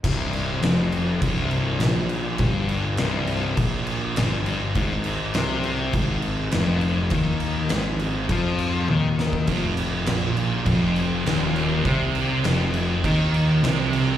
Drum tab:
CC |x-x-x-x-x-x-x-x-|x-x-x-x-x-x-x-x-|x-x-x-x-x-x-x-x-|x-x-x-x-x-x-----|
SD |----o-------o---|----o-------o---|----o-------o---|----o---------o-|
T1 |----------------|----------------|----------------|------------o---|
BD |o-------o-------|o-------o-------|o-------o-------|o-------o------o|

CC |x-x-x-x-x-x-x-x-|x-x-x-x-x-x-x-x-|
SD |----o-------o---|----o-------o---|
T1 |----------------|----------------|
BD |o-------o-------|o-------o-------|